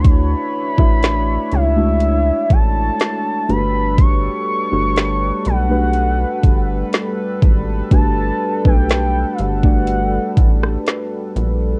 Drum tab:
HH |x---x-x-x-x-x-x-|x---x-x-x-x-x-x-|x---x-x-x-x-x-x-|
SD |----o-------o---|----o-------o---|----o------ro---|
BD |o--o------o-----|o---------o---o-|o--o---o--o-----|